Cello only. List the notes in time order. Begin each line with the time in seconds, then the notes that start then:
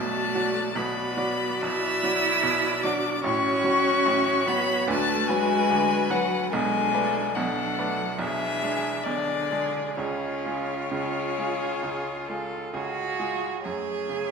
Already playing: A3
0.76 B3
1.62 E4
2.85 D4
3.23 C#4
4.47 B3
4.88 A3
5.29 G#3
6.09 F#3
6.50 G#3
7.35 F#3
8.19 E3
9.06 D3
9.97 C#3
12.74 F#4
13.63 G#4